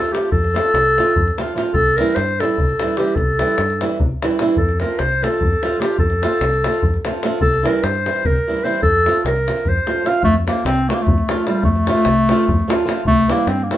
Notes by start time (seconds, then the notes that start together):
Already playing: C4 F4 A4
0.05 davul high
0.13 F3 A3 C4 F4 G4, davul high
0.32 F2 A4, davul low
0.44 davul high
0.54 F3 A3 C4 F4, davul high
0.74 C2, davul high
0.86 davul high
0.98 F3 A3 C4 F4, davul high
1.07 davul high
1.16 F2, davul low
1.28 davul high
1.38 F3 A3 C4 F4, davul high
1.48 davul high
1.56 F3 A3 C4 F4, davul high
1.73 C2 A4, davul low
1.86 davul high
1.97 E3 G3 C4 E4 A#4, davul high
2.15 G2 C5, davul high
2.28 davul high
2.40 E3 G3 C4 E4 A4, davul high
2.49 davul high
2.58 C2, davul low
2.69 davul high
2.80 E3 G3 C4 E4, davul high
2.88 davul high
2.97 E3 G3 C4 E4 G4, davul high
3.16 C2 A4, davul low
3.39 E3 G3 C4 E4, davul high
3.58 G2, davul high
3.70 davul high
3.81 E3 G3 C4 E4, davul high
3.91 davul high
4.00 C2, davul low
4.22 E3 G3 C4 E4, davul high
4.31 davul high
4.39 E3 G3 C4 E4, davul high
4.49 davul high
4.57 F2 A4, davul low
4.69 davul high
4.80 F3 A3 C4 F4 A#4, davul high
4.99 C2 C5, davul high
5.12 davul high
5.22 F3 A3 C4 F4 A4, davul high
5.33 davul high
5.41 F2, davul low
5.53 davul high
5.63 F3 A3 C4 F4, davul high
5.73 davul high
5.79 F3 A3 C4 F4 G4, davul high
5.98 F2 A4, davul low
6.10 davul high
6.22 F3 A3 C4 F4, davul high
6.41 C2, davul high
6.54 davul high
6.64 F3 A3 C4 F4, davul high
6.74 davul high
6.82 F2, davul low
6.94 davul high
7.05 F3 A3 C4 F4, davul high
7.14 davul high
7.23 F3 A3 C4 F4, davul high
7.41 C2 A4, davul low
7.54 davul high
7.63 E3 G3 C4 E4 A#4, davul high
7.83 G2 C5, davul high
7.95 davul high
8.06 E3 G3 C4 E4, davul high
8.16 davul high
8.25 C2 A#4, davul low
8.36 davul high
8.47 E3 G3 C4 E4
8.57 davul high
8.64 E3 G3 C4 E4 C5
8.83 F2 A4, davul low
9.06 F3 A3 C4 F4, davul high
9.25 C2 A#4, davul high
9.36 davul high
9.47 F3 A3 C4 F4, davul high
9.57 davul high
9.65 F2 C5, davul low
9.77 davul high
9.87 F3 A3 C4 F4, davul high
10.04 F3 A3 C4 F4 F5, davul high
10.15 davul high
10.23 F2 A3, davul low
10.36 davul high
10.47 F3 A3 A#3 C4 F4, davul high
10.65 C2 C4, davul high
10.78 davul high
10.89 F3 A3 C4 F4, davul high
10.94 A#3
10.99 A3, davul high
11.07 F2, davul low
11.18 davul high
11.28 F3 A3 C4 F4, davul high
11.38 davul high
11.47 F3 G3 A3 C4 F4, davul high
11.63 F2 A3, davul low
11.75 davul high
11.87 F3 A3 C4 F4, davul high
12.05 C2, davul high
12.18 davul high
12.29 F3 A3 C4 F4, davul high
12.39 davul high
12.48 F2, davul low
12.60 davul high
12.68 F3 A3 C4 F4, davul high
12.80 davul high
12.86 F3 A3 C4 F4, davul high
13.05 C2 A3, davul low
13.19 davul high
13.28 E3 G3 A#3 C4 E4, davul high
13.47 G2 C4, davul high
13.60 A#3, davul high
13.71 E3 G3 A3 C4 E4, davul high